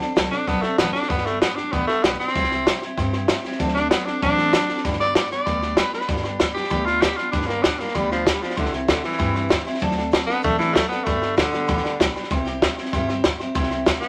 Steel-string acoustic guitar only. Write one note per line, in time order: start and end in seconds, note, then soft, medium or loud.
0.00 0.15 C4 medium
0.00 0.16 D4 medium
0.00 0.16 A4 medium
0.15 0.32 F#3 medium
0.15 0.32 C4 medium
0.15 0.31 D4 medium
0.15 0.30 A4 medium
0.31 0.48 C4 soft
0.31 0.48 D4 medium
0.31 0.47 A4 medium
0.48 0.64 D3 medium
0.48 0.64 F#3 medium
0.48 0.64 C4 medium
0.48 0.63 D4 medium
0.48 0.62 A4 medium
0.63 0.78 C4 soft
0.63 0.78 D4 soft
0.63 0.79 A4 medium
0.78 0.94 F#3 medium
0.78 0.95 C4 medium
0.78 0.94 D4 medium
0.78 0.93 A4 medium
0.94 1.11 C4 soft
0.94 1.11 D4 soft
0.94 1.10 A4 medium
1.11 1.26 G2 medium
1.11 1.26 D3 medium
1.11 1.26 G3 medium
1.11 1.26 B3 medium
1.11 1.27 D4 medium
1.11 1.26 G4 medium
1.27 1.40 G3 soft
1.27 1.41 B3 medium
1.27 1.42 D4 soft
1.27 1.42 G4 medium
1.41 1.57 G3 medium
1.41 1.57 B3 medium
1.41 1.57 D4 medium
1.41 1.56 G4 medium
1.58 1.72 G3 soft
1.58 1.73 B3 soft
1.58 1.73 D4 medium
1.58 1.73 G4 medium
1.73 1.88 G2 medium
1.73 1.89 D3 medium
1.73 1.89 G3 medium
1.73 1.89 B3 medium
1.73 1.88 D4 medium
1.73 1.87 G4 medium
1.88 2.03 G3 soft
1.88 2.04 B3 medium
1.88 2.04 D4 soft
1.88 2.04 G4 medium
2.04 2.20 G3 medium
2.04 2.20 B3 medium
2.04 2.19 D4 medium
2.04 2.18 G4 medium
2.19 2.35 G3 medium
2.19 2.36 B3 medium
2.19 2.35 D4 medium
2.19 2.35 G4 medium
2.37 2.51 C3 medium
2.37 2.51 G3 medium
2.37 2.52 C4 medium
2.37 2.51 E4 medium
2.37 2.50 G4 medium
2.51 2.66 C4 soft
2.51 2.67 E4 soft
2.51 2.66 G4 soft
2.67 2.82 G3 medium
2.67 2.82 C4 medium
2.67 2.82 E4 medium
2.67 2.81 G4 medium
2.82 2.98 C4 medium
2.82 2.98 E4 medium
2.82 2.98 G4 medium
2.99 3.14 C3 medium
2.99 3.14 G3 medium
2.99 3.14 C4 loud
2.99 3.13 E4 loud
2.99 3.12 G4 medium
3.13 3.29 C4 soft
3.13 3.29 E4 medium
3.13 3.29 G4 medium
3.29 3.44 G3 medium
3.29 3.45 C4 medium
3.29 3.44 E4 medium
3.29 3.43 G4 medium
3.44 3.59 C4 medium
3.44 3.60 E4 medium
3.44 3.60 G4 medium
3.59 3.75 D3 medium
3.59 3.75 F#3 loud
3.59 3.75 C4 loud
3.59 3.75 D4 loud
3.59 3.74 A4 loud
3.75 3.91 C4 soft
3.75 3.91 D4 medium
3.75 3.91 A4 medium
3.91 4.06 F#3 medium
3.91 4.07 C4 medium
3.91 4.06 D4 medium
3.91 4.06 A4 medium
4.07 4.22 C4 medium
4.07 4.22 D4 medium
4.07 4.22 A4 medium
4.22 4.38 D3 medium
4.22 4.38 F#3 medium
4.22 4.38 C4 medium
4.22 4.38 D4 medium
4.22 4.37 A4 medium
4.38 4.53 C4 soft
4.38 4.54 D4 soft
4.38 4.53 A4 medium
4.53 4.69 F#3 medium
4.53 4.68 A4 medium
4.69 4.85 C4 medium
4.69 4.85 D4 medium
4.69 4.85 A4 medium
4.85 5.00 G2 medium
4.85 5.00 D3 loud
4.85 5.00 G3 medium
4.85 5.01 B3 loud
4.85 5.00 D4 loud
4.85 4.99 G4 medium
5.00 5.14 G3 soft
5.00 5.15 B3 soft
5.00 5.15 D4 medium
5.00 5.16 G4 medium
5.15 5.31 G3 medium
5.15 5.31 B3 medium
5.15 5.31 D4 medium
5.15 5.30 G4 medium
5.31 5.46 G3 medium
5.31 5.46 B3 soft
5.31 5.46 D4 medium
5.31 5.47 G4 medium
5.46 5.62 G2 medium
5.46 5.62 D3 medium
5.46 5.62 G3 medium
5.46 5.63 B3 medium
5.46 5.62 D4 medium
5.46 5.61 G4 medium
5.62 5.77 G3 soft
5.62 5.79 B3 medium
5.62 5.78 D4 soft
5.62 5.78 G4 medium
5.78 5.94 G3 medium
5.78 5.94 B3 medium
5.78 5.94 D4 medium
5.78 5.93 G4 medium
5.94 6.08 G3 soft
5.94 6.09 B3 medium
5.94 6.09 D4 medium
5.94 6.09 G4 medium
6.08 6.24 G2 medium
6.08 6.25 D3 medium
6.08 6.25 G3 medium
6.08 6.24 B3 medium
6.08 6.23 D4 medium
6.08 6.22 G4 medium
6.23 6.38 G3 soft
6.23 6.39 B3 medium
6.23 6.39 D4 medium
6.23 6.40 G4 medium
6.40 6.55 G3 medium
6.40 6.55 B3 medium
6.40 6.55 D4 medium
6.40 6.54 G4 medium
6.55 6.69 G3 medium
6.55 6.69 B3 soft
6.55 6.69 D4 medium
6.55 6.70 G4 medium
6.70 6.86 G2 medium
6.70 6.86 D3 medium
6.70 6.86 G3 medium
6.70 6.86 B3 medium
6.70 6.86 D4 medium
6.70 6.85 G4 medium
6.86 7.00 G3 medium
6.86 7.01 B3 medium
6.86 7.02 D4 medium
6.86 7.02 G4 medium
7.01 7.17 G3 medium
7.01 7.18 B3 medium
7.01 7.18 D4 medium
7.18 7.32 G3 soft
7.18 7.32 B3 medium
7.18 7.33 D4 medium
7.18 7.32 G4 medium
7.33 7.49 G2 medium
7.33 7.49 D3 medium
7.33 7.49 G3 medium
7.33 7.48 B3 medium
7.33 7.47 D4 medium
7.33 7.47 G4 medium
7.48 7.63 G3 soft
7.48 7.64 B3 medium
7.48 7.64 D4 medium
7.48 7.64 G4 soft
7.64 7.80 G3 medium
7.64 7.80 B3 medium
7.64 7.79 G4 medium
7.80 7.94 G3 medium
7.80 7.95 B3 medium
7.80 7.95 D4 medium
7.80 7.95 G4 medium
7.94 8.11 G2 medium
7.94 8.11 D3 medium
7.94 8.11 G3 medium
7.94 8.11 B3 medium
7.94 8.11 D4 medium
7.94 8.10 G4 loud
8.12 8.25 G3 soft
8.12 8.25 B3 medium
8.12 8.26 D4 medium
8.12 8.26 G4 medium
8.26 8.42 G3 medium
8.26 8.41 B3 medium
8.26 8.41 D4 medium
8.26 8.40 G4 medium
8.42 8.56 G3 soft
8.42 8.57 B3 medium
8.42 8.57 D4 medium
8.42 8.56 G4 medium
8.56 8.72 C3 medium
8.56 8.73 G3 medium
8.56 8.73 C4 medium
8.56 8.72 E4 medium
8.56 8.71 G4 medium
8.72 8.87 C4 medium
8.72 8.88 E4 soft
8.72 8.88 G4 medium
8.88 9.04 G3 medium
8.88 9.03 E4 medium
8.88 9.03 G4 medium
9.04 9.18 C4 soft
9.04 9.19 E4 medium
9.04 9.19 G4 medium
9.19 9.35 C3 medium
9.19 9.35 G3 medium
9.19 9.35 C4 medium
9.19 9.34 E4 medium
9.19 9.33 G4 medium
9.34 9.49 C4 soft
9.34 9.49 E4 medium
9.34 9.50 G4 medium
9.49 9.66 G3 medium
9.49 9.66 C4 medium
9.49 9.65 E4 medium
9.49 9.64 G4 medium
9.65 9.79 C4 medium
9.65 9.80 E4 medium
9.65 9.81 G4 medium
9.79 9.96 D3 medium
9.79 9.97 F#3 medium
9.79 9.96 C4 loud
9.79 9.96 D4 loud
9.79 9.94 A4 medium
9.96 10.11 C4 medium
9.96 10.11 D4 medium
9.96 10.12 A4 medium
10.11 10.28 F#3 medium
10.11 10.27 C4 medium
10.11 10.26 D4 medium
10.11 10.25 A4 medium
10.26 10.42 C4 soft
10.26 10.42 D4 medium
10.26 10.42 A4 medium
10.42 10.59 D3 medium
10.42 10.59 F#3 medium
10.42 10.58 C4 medium
10.42 10.57 D4 loud
10.42 10.56 A4 loud
10.57 10.73 C4 soft
10.57 10.74 D4 medium
10.57 10.74 A4 medium
10.73 10.90 F#3 medium
10.73 10.90 C4 medium
10.73 10.90 D4 medium
10.90 11.07 C4 soft
10.90 11.06 D4 soft
10.90 11.06 A4 medium
11.06 11.22 G2 medium
11.06 11.22 D3 medium
11.06 11.22 G3 medium
11.06 11.22 B3 medium
11.06 11.22 D4 medium
11.06 11.21 G4 medium
11.22 11.36 G3 soft
11.22 11.36 B3 medium
11.22 11.37 D4 medium
11.22 11.38 G4 medium
11.37 11.53 G3 medium
11.37 11.52 B3 medium
11.37 11.51 G4 medium
11.52 11.67 G3 medium
11.52 11.67 B3 medium
11.52 11.67 D4 medium
11.52 11.68 G4 medium
11.67 11.84 G2 medium
11.67 11.84 D3 medium
11.67 11.84 G3 medium
11.67 11.84 B3 medium
11.67 11.84 D4 loud
11.67 11.83 G4 medium
11.84 11.99 G3 medium
11.84 11.99 B3 medium
11.84 12.00 D4 medium
11.84 12.00 G4 medium
12.00 12.15 G3 medium
12.00 12.15 B3 medium
12.00 12.15 D4 medium
12.00 12.13 G4 medium
12.14 12.29 G3 medium
12.14 12.30 B3 medium
12.14 12.31 D4 medium
12.14 12.30 G4 medium
12.30 12.46 C3 medium
12.30 12.46 G3 medium
12.30 12.46 C4 medium
12.30 12.46 E4 medium
12.30 12.44 G4 loud
12.45 12.61 C4 medium
12.45 12.62 E4 medium
12.45 12.61 G4 medium
12.62 12.78 G3 medium
12.62 12.78 C4 medium
12.62 12.78 E4 medium
12.62 12.77 G4 medium
12.78 12.94 C4 medium
12.78 12.93 E4 medium
12.78 12.93 G4 medium
12.94 13.09 C3 medium
12.94 13.09 G3 loud
12.94 13.10 C4 medium
12.94 13.09 E4 loud
12.94 13.08 G4 loud
13.09 13.23 C4 medium
13.09 13.24 E4 medium
13.09 13.24 G4 medium
13.24 13.40 G3 medium
13.24 13.40 C4 medium
13.24 13.38 G4 medium
13.39 13.54 C4 medium
13.39 13.54 E4 medium
13.39 13.55 G4 medium
13.55 13.71 C3 medium
13.55 13.71 G3 loud
13.55 13.71 C4 medium
13.55 13.70 E4 loud
13.55 13.69 G4 medium
13.70 13.85 C4 medium
13.70 13.86 E4 medium
13.70 13.86 G4 medium
13.86 14.02 G3 medium
13.86 14.02 C4 medium
13.86 14.02 E4 medium
13.86 14.01 G4 medium
14.02 14.08 C4 medium
14.02 14.08 E4 medium
14.02 14.08 G4 medium